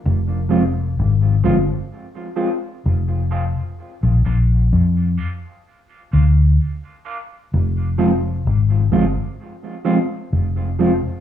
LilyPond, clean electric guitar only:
\new Staff \with { instrumentName = "Clean electric guitar" } { \time 4/4 \key f \dorian \tempo 4 = 64 r8 <f aes c' f'>8 r8 <f aes c' f'>8 r8 <f aes c' f'>8 r8 <f aes c' f'>8 | r8 <f bes d' f'>8 r8 <f bes d' f'>8 r8 <f bes d' f'>8 r8 <f bes d' f'>8 | r8 <f aes c' f'>8 r8 <f aes c' f'>8 r8 <f aes c' f'>8 r8 <f aes c' f'>8 | }